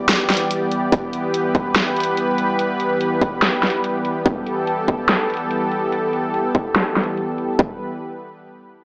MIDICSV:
0, 0, Header, 1, 3, 480
1, 0, Start_track
1, 0, Key_signature, 1, "minor"
1, 0, Tempo, 416667
1, 1063, Time_signature, 4, 2, 24, 8
1, 10184, End_track
2, 0, Start_track
2, 0, Title_t, "Analog synth pad"
2, 0, Program_c, 0, 89
2, 0, Note_on_c, 0, 52, 76
2, 0, Note_on_c, 0, 55, 72
2, 0, Note_on_c, 0, 59, 72
2, 0, Note_on_c, 0, 67, 71
2, 0, Note_on_c, 0, 74, 84
2, 1051, Note_off_c, 0, 74, 0
2, 1064, Note_on_c, 0, 71, 86
2, 4891, Note_off_c, 0, 71, 0
2, 4904, Note_on_c, 0, 69, 90
2, 8697, Note_off_c, 0, 52, 0
2, 8697, Note_off_c, 0, 55, 0
2, 8697, Note_off_c, 0, 59, 0
2, 8697, Note_off_c, 0, 67, 0
2, 8731, Note_off_c, 0, 69, 0
2, 8743, Note_on_c, 0, 59, 67
2, 8744, Note_on_c, 0, 52, 73
2, 8744, Note_on_c, 0, 55, 66
2, 8744, Note_on_c, 0, 67, 68
2, 8744, Note_on_c, 0, 71, 79
2, 8967, Note_off_c, 0, 52, 0
2, 8967, Note_off_c, 0, 55, 0
2, 8967, Note_off_c, 0, 59, 0
2, 8967, Note_off_c, 0, 67, 0
2, 8967, Note_off_c, 0, 71, 0
2, 10184, End_track
3, 0, Start_track
3, 0, Title_t, "Drums"
3, 104, Note_on_c, 9, 38, 123
3, 104, Note_on_c, 9, 42, 80
3, 219, Note_off_c, 9, 38, 0
3, 219, Note_off_c, 9, 42, 0
3, 344, Note_on_c, 9, 38, 65
3, 344, Note_on_c, 9, 42, 51
3, 388, Note_off_c, 9, 42, 0
3, 388, Note_on_c, 9, 42, 66
3, 424, Note_off_c, 9, 42, 0
3, 424, Note_on_c, 9, 42, 78
3, 459, Note_off_c, 9, 38, 0
3, 539, Note_off_c, 9, 42, 0
3, 583, Note_on_c, 9, 42, 78
3, 699, Note_off_c, 9, 42, 0
3, 824, Note_on_c, 9, 42, 54
3, 939, Note_off_c, 9, 42, 0
3, 1064, Note_on_c, 9, 36, 117
3, 1064, Note_on_c, 9, 42, 77
3, 1179, Note_off_c, 9, 36, 0
3, 1179, Note_off_c, 9, 42, 0
3, 1303, Note_on_c, 9, 42, 51
3, 1419, Note_off_c, 9, 42, 0
3, 1543, Note_on_c, 9, 42, 75
3, 1659, Note_off_c, 9, 42, 0
3, 1783, Note_on_c, 9, 36, 61
3, 1783, Note_on_c, 9, 42, 51
3, 1899, Note_off_c, 9, 36, 0
3, 1899, Note_off_c, 9, 42, 0
3, 2023, Note_on_c, 9, 38, 115
3, 2023, Note_on_c, 9, 42, 74
3, 2139, Note_off_c, 9, 38, 0
3, 2139, Note_off_c, 9, 42, 0
3, 2263, Note_on_c, 9, 42, 48
3, 2307, Note_off_c, 9, 42, 0
3, 2307, Note_on_c, 9, 42, 62
3, 2343, Note_off_c, 9, 42, 0
3, 2343, Note_on_c, 9, 42, 75
3, 2459, Note_off_c, 9, 42, 0
3, 2503, Note_on_c, 9, 42, 75
3, 2619, Note_off_c, 9, 42, 0
3, 2743, Note_on_c, 9, 42, 52
3, 2859, Note_off_c, 9, 42, 0
3, 2983, Note_on_c, 9, 42, 75
3, 3098, Note_off_c, 9, 42, 0
3, 3223, Note_on_c, 9, 42, 49
3, 3338, Note_off_c, 9, 42, 0
3, 3463, Note_on_c, 9, 42, 76
3, 3579, Note_off_c, 9, 42, 0
3, 3703, Note_on_c, 9, 36, 59
3, 3703, Note_on_c, 9, 42, 51
3, 3819, Note_off_c, 9, 36, 0
3, 3819, Note_off_c, 9, 42, 0
3, 3943, Note_on_c, 9, 38, 113
3, 3943, Note_on_c, 9, 42, 74
3, 4058, Note_off_c, 9, 38, 0
3, 4058, Note_off_c, 9, 42, 0
3, 4184, Note_on_c, 9, 38, 60
3, 4184, Note_on_c, 9, 42, 48
3, 4227, Note_off_c, 9, 42, 0
3, 4227, Note_on_c, 9, 42, 60
3, 4263, Note_off_c, 9, 42, 0
3, 4263, Note_on_c, 9, 42, 78
3, 4299, Note_off_c, 9, 38, 0
3, 4378, Note_off_c, 9, 42, 0
3, 4423, Note_on_c, 9, 42, 75
3, 4539, Note_off_c, 9, 42, 0
3, 4663, Note_on_c, 9, 42, 50
3, 4778, Note_off_c, 9, 42, 0
3, 4903, Note_on_c, 9, 36, 114
3, 4903, Note_on_c, 9, 42, 80
3, 5018, Note_off_c, 9, 42, 0
3, 5019, Note_off_c, 9, 36, 0
3, 5144, Note_on_c, 9, 42, 51
3, 5259, Note_off_c, 9, 42, 0
3, 5383, Note_on_c, 9, 42, 77
3, 5498, Note_off_c, 9, 42, 0
3, 5623, Note_on_c, 9, 36, 58
3, 5623, Note_on_c, 9, 42, 55
3, 5739, Note_off_c, 9, 36, 0
3, 5739, Note_off_c, 9, 42, 0
3, 5863, Note_on_c, 9, 38, 113
3, 5863, Note_on_c, 9, 42, 76
3, 5978, Note_off_c, 9, 38, 0
3, 5978, Note_off_c, 9, 42, 0
3, 6103, Note_on_c, 9, 42, 49
3, 6147, Note_off_c, 9, 42, 0
3, 6147, Note_on_c, 9, 42, 64
3, 6184, Note_off_c, 9, 42, 0
3, 6184, Note_on_c, 9, 42, 80
3, 6299, Note_off_c, 9, 42, 0
3, 6343, Note_on_c, 9, 42, 74
3, 6459, Note_off_c, 9, 42, 0
3, 6584, Note_on_c, 9, 42, 53
3, 6699, Note_off_c, 9, 42, 0
3, 6823, Note_on_c, 9, 42, 78
3, 6939, Note_off_c, 9, 42, 0
3, 7063, Note_on_c, 9, 42, 53
3, 7179, Note_off_c, 9, 42, 0
3, 7304, Note_on_c, 9, 42, 78
3, 7419, Note_off_c, 9, 42, 0
3, 7544, Note_on_c, 9, 36, 59
3, 7544, Note_on_c, 9, 42, 56
3, 7659, Note_off_c, 9, 36, 0
3, 7659, Note_off_c, 9, 42, 0
3, 7784, Note_on_c, 9, 38, 112
3, 7784, Note_on_c, 9, 42, 80
3, 7899, Note_off_c, 9, 38, 0
3, 7899, Note_off_c, 9, 42, 0
3, 8024, Note_on_c, 9, 38, 61
3, 8024, Note_on_c, 9, 42, 51
3, 8068, Note_off_c, 9, 42, 0
3, 8068, Note_on_c, 9, 42, 69
3, 8104, Note_off_c, 9, 42, 0
3, 8104, Note_on_c, 9, 42, 82
3, 8139, Note_off_c, 9, 38, 0
3, 8219, Note_off_c, 9, 42, 0
3, 8264, Note_on_c, 9, 42, 81
3, 8379, Note_off_c, 9, 42, 0
3, 8504, Note_on_c, 9, 42, 54
3, 8619, Note_off_c, 9, 42, 0
3, 8744, Note_on_c, 9, 36, 111
3, 8859, Note_off_c, 9, 36, 0
3, 10184, End_track
0, 0, End_of_file